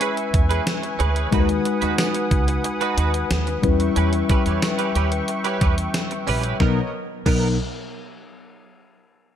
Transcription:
Already playing: tine electric piano G#3 C#4 E4 B4, analog synth pad B4 E5 G#5 C#6
0.00 clean electric guitar C#4 G#4 B4, closed hi-hat
0.17 muted clean electric guitar stroke, closed hi-hat
0.33 upright bass E2, muted clean electric guitar stroke, kick, closed hi-hat
0.49 clean electric guitar C#4 G#4 B4, closed hi-hat
0.67 snare, closed hi-hat, tambourine
0.83 muted clean electric guitar stroke, closed hi-hat
0.99 upright bass D2, clean electric guitar C#4 G#4 B4, closed hi-hat
1.15 clean electric guitar C#4 G#4 B4, closed hi-hat
1.31 upright bass D#2, tine electric piano G#3 D#4 F#4 A#4, clean electric guitar D#4 F#4 B4, analog synth pad F#5 D#6, kick, closed hi-hat
1.40 tine electric piano B4
1.48 muted clean electric guitar stroke, closed hi-hat
1.65 muted clean electric guitar stroke, closed hi-hat
1.81 upright bass D#2, clean electric guitar D#4 F#4 B4, closed hi-hat
1.98 snare, closed hi-hat, tambourine
2.15 muted clean electric guitar stroke, closed hi-hat
2.31 upright bass C#2, kick, closed hi-hat
2.48 muted clean electric guitar stroke, closed hi-hat
2.64 muted clean electric guitar stroke, closed hi-hat
2.81 clean electric guitar D#4 F#4 B4, closed hi-hat
2.97 upright bass D#2, clean electric guitar D#4 F#4 B4, closed hi-hat
3.14 muted clean electric guitar stroke, closed hi-hat
3.30 upright bass D#2, muted clean electric guitar stroke, snare, closed hi-hat, tambourine
3.47 muted clean electric guitar stroke, closed hi-hat
3.62 upright bass E2, tine electric piano G3 C#4 E4 B4, analog synth pad E5 G5 C#6, kick, closed hi-hat
3.80 muted clean electric guitar stroke, closed hi-hat
3.96 upright bass E2, clean electric guitar C#4 G4 B4, closed hi-hat
4.13 muted clean electric guitar stroke, closed hi-hat
4.29 clean electric guitar C#4 G4 B4, kick, closed hi-hat
4.46 upright bass E2, clean electric guitar C#4 G4 B4, closed hi-hat
4.62 muted clean electric guitar stroke, snare, closed hi-hat, tambourine
4.78 clean electric guitar C#4 G4 B4, closed hi-hat
4.95 upright bass D#2, clean electric guitar C#4 G4 B4, closed hi-hat
5.12 muted clean electric guitar stroke, closed hi-hat
5.28 muted clean electric guitar stroke, closed hi-hat
5.44 clean electric guitar C#4 G4 B4, closed hi-hat
5.61 upright bass E2, clean electric guitar C#4 G4 B4, kick, closed hi-hat
5.78 muted clean electric guitar stroke, closed hi-hat
5.94 muted clean electric guitar stroke, snare, closed hi-hat, tambourine
6.11 muted clean electric guitar stroke, closed hi-hat
6.27 upright bass A#1, clean electric guitar C#4 G4 B4, open hi-hat
6.43 clean electric guitar C#4 G4 B4, closed hi-hat
6.60 upright bass B1, analog synth pad B2 B3 A#4 C#5 D#5, tine electric piano F#3 B3 D#4 A#4, clean electric guitar B3 D#4 A#4, kick, snare
7.26 upright bass B1, tine electric piano F#3 B3 D#4 A#4, clean electric guitar B3 D#4 A#4, kick, crash

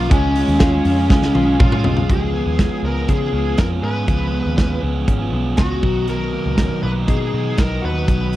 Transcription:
Already playing: overdriven electric guitar A#2 F3 A#3 C#4 F4 A#4, clean electric guitar F3 C#4 F4, lead electric guitar F4
0.10 picked electric bass C#2, clean electric guitar G#3, overdriven electric guitar G#3 C#4 F4 G#4, lead electric guitar C#4, kick, hi-hat pedal, ride
0.35 overdriven electric guitar G#3 C#4 F4 G#4, clean electric guitar C#4, open hi-hat
0.48 picked electric bass D#2
0.59 clean electric guitar F4, kick, snare, hi-hat pedal, ride
0.72 overdriven electric guitar C#3 G#3 C#4 F4 G#4
0.84 picked electric bass F2, clean electric guitar C#4, open hi-hat
1.09 picked electric bass C#2, overdriven electric guitar G#3 C#4 F4 G#4, clean electric guitar G#3, kick, snare
1.22 snare
1.34 picked electric bass B1, overdriven electric guitar C#3 G#3 C#4 F4 G#4, clean electric guitar F4, high tom
1.60 picked electric bass A#1, clean electric guitar C#4, lead electric guitar F4, kick, mid tom
1.72 overdriven electric guitar C#3 G#3 C#4 F4 G#4, mid tom
1.84 picked electric bass B1, clean electric guitar G#3, floor tom
1.97 floor tom
2.09 picked electric bass C#2, overdriven electric guitar C#3 G#3 B3 F4 G#4, clean electric guitar F3, lead electric guitar G#4, kick, closed hi-hat
2.33 clean electric guitar B3
2.46 picked electric bass D#2
2.58 clean electric guitar C#4, kick, snare, closed hi-hat
2.83 picked electric bass C#2, overdriven electric guitar G#3 B3 F4 G#4, clean electric guitar B3, lead electric guitar A#4
3.08 picked electric bass C#3, clean electric guitar C#4, lead electric guitar G#4, kick, closed hi-hat
3.21 overdriven electric guitar B3 F4 G#4
3.33 picked electric bass C#2, overdriven electric guitar G#3 B3 F4 G#4, clean electric guitar B3
3.57 picked electric bass F2, overdriven electric guitar G#3 B3 F4 G#4, clean electric guitar C#4, lead electric guitar A#4, kick, snare, closed hi-hat
3.82 picked electric bass G#2, overdriven electric guitar G#3 B3 F4 G#4, clean electric guitar G#4, lead electric guitar B4
4.06 picked electric bass C#2, overdriven electric guitar C#3 G#3 B3 F4 G#4, clean electric guitar F3, kick, closed hi-hat
4.33 clean electric guitar B3
4.46 picked electric bass D#2
4.57 clean electric guitar C#4, kick, snare, closed hi-hat
4.80 picked electric bass C#2, overdriven electric guitar G#3 B3 F4 G#4, clean electric guitar B3
5.07 picked electric bass G#1, clean electric guitar C#4, kick, closed hi-hat
5.19 overdriven electric guitar B3 F4 G#4
5.32 picked electric bass B1, overdriven electric guitar G#3 B3 F4 G#4, clean electric guitar B3
5.57 picked electric bass C#2, overdriven electric guitar G#3 B3 F4 G#4, clean electric guitar C#4, lead electric guitar F#4, kick, snare, closed hi-hat
5.82 picked electric bass B1, clean electric guitar F#3, overdriven electric guitar F#3 B3 D#4 A#4, kick
6.07 overdriven electric guitar B2 D#3 F#3 B3 D#4 A#4, clean electric guitar F#3, lead electric guitar A#4, closed hi-hat
6.33 clean electric guitar A#3
6.46 picked electric bass C#2
6.58 clean electric guitar C#4, kick, snare, closed hi-hat
6.70 clean electric guitar D#4
6.82 picked electric bass B1, overdriven electric guitar F#3 B3 D#4 A#4, clean electric guitar A#3, lead electric guitar B4
7.07 picked electric bass B2, clean electric guitar D#4, lead electric guitar G#4, kick, closed hi-hat
7.20 overdriven electric guitar F#3 B3 D#4 A#4
7.32 picked electric bass B2, overdriven electric guitar F#3 B3 D#4 A#4
7.57 picked electric bass B1, overdriven electric guitar F#3 B3 D#4 A#4, clean electric guitar D#4, lead electric guitar A#4, kick, snare, closed hi-hat
7.82 picked electric bass D#2, overdriven electric guitar F#3 B3 D#4, clean electric guitar F#4, lead electric guitar B4
7.86 overdriven electric guitar A#4
8.07 picked electric bass B1, overdriven electric guitar B2 D#3 F#3 B3 D#4, clean electric guitar F#3, kick, closed hi-hat
8.33 open hi-hat

